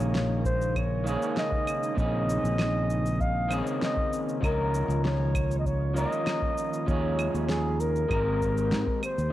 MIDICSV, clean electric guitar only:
0, 0, Header, 1, 2, 480
1, 0, Start_track
1, 0, Tempo, 612245
1, 1553, Time_signature, 4, 2, 24, 8
1, 7312, End_track
2, 0, Start_track
2, 0, Title_t, "Clean electric guitar"
2, 0, Program_c, 0, 27
2, 0, Note_on_c, 0, 51, 88
2, 0, Note_on_c, 0, 58, 78
2, 0, Note_on_c, 0, 61, 81
2, 0, Note_on_c, 0, 68, 97
2, 794, Note_off_c, 0, 51, 0
2, 801, Note_off_c, 0, 58, 0
2, 807, Note_off_c, 0, 61, 0
2, 812, Note_off_c, 0, 68, 0
2, 815, Note_on_c, 0, 51, 85
2, 827, Note_on_c, 0, 58, 78
2, 840, Note_on_c, 0, 61, 77
2, 852, Note_on_c, 0, 68, 94
2, 1515, Note_off_c, 0, 51, 0
2, 1522, Note_off_c, 0, 58, 0
2, 1528, Note_off_c, 0, 61, 0
2, 1531, Note_on_c, 0, 51, 86
2, 1534, Note_off_c, 0, 68, 0
2, 1542, Note_on_c, 0, 60, 77
2, 1553, Note_on_c, 0, 61, 81
2, 1570, Note_on_c, 0, 68, 97
2, 2714, Note_off_c, 0, 51, 0
2, 2719, Note_off_c, 0, 60, 0
2, 2724, Note_off_c, 0, 61, 0
2, 2733, Note_off_c, 0, 68, 0
2, 2734, Note_on_c, 0, 51, 90
2, 2747, Note_on_c, 0, 60, 82
2, 2761, Note_on_c, 0, 61, 85
2, 2774, Note_on_c, 0, 68, 98
2, 3435, Note_off_c, 0, 51, 0
2, 3442, Note_off_c, 0, 60, 0
2, 3449, Note_off_c, 0, 61, 0
2, 3455, Note_off_c, 0, 68, 0
2, 3456, Note_on_c, 0, 53, 92
2, 3466, Note_on_c, 0, 61, 83
2, 3480, Note_on_c, 0, 63, 85
2, 3492, Note_on_c, 0, 70, 99
2, 4636, Note_off_c, 0, 53, 0
2, 4641, Note_off_c, 0, 61, 0
2, 4648, Note_off_c, 0, 63, 0
2, 4654, Note_off_c, 0, 70, 0
2, 4659, Note_on_c, 0, 53, 94
2, 4670, Note_on_c, 0, 61, 85
2, 4683, Note_on_c, 0, 63, 80
2, 4693, Note_on_c, 0, 70, 100
2, 5357, Note_off_c, 0, 53, 0
2, 5363, Note_off_c, 0, 61, 0
2, 5370, Note_off_c, 0, 63, 0
2, 5375, Note_off_c, 0, 70, 0
2, 5380, Note_on_c, 0, 53, 93
2, 5391, Note_on_c, 0, 61, 85
2, 5404, Note_on_c, 0, 63, 83
2, 5419, Note_on_c, 0, 68, 96
2, 6332, Note_off_c, 0, 53, 0
2, 6338, Note_off_c, 0, 61, 0
2, 6339, Note_on_c, 0, 56, 86
2, 6344, Note_off_c, 0, 63, 0
2, 6349, Note_on_c, 0, 60, 80
2, 6352, Note_off_c, 0, 68, 0
2, 6366, Note_on_c, 0, 67, 79
2, 6375, Note_on_c, 0, 70, 93
2, 7066, Note_off_c, 0, 56, 0
2, 7071, Note_off_c, 0, 60, 0
2, 7080, Note_off_c, 0, 67, 0
2, 7084, Note_off_c, 0, 70, 0
2, 7312, End_track
0, 0, End_of_file